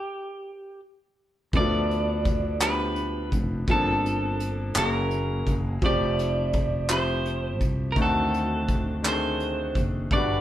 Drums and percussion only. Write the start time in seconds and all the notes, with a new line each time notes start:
1.53 kick, closed hi-hat
1.91 closed hi-hat
2.25 kick, closed hi-hat
2.61 clap
2.96 closed hi-hat
3.32 kick, closed hi-hat
3.68 kick, closed hi-hat
4.06 closed hi-hat
4.40 closed hi-hat
4.76 clap
5.11 closed hi-hat
5.47 kick, closed hi-hat
5.82 kick, closed hi-hat
6.19 closed hi-hat
6.53 kick, closed hi-hat
6.88 clap, closed hi-hat
7.25 closed hi-hat
7.61 kick, closed hi-hat
7.96 kick, closed hi-hat
8.34 closed hi-hat
8.68 kick, closed hi-hat
9.04 clap, closed hi-hat
9.40 closed hi-hat
9.75 kick, closed hi-hat
10.11 kick, closed hi-hat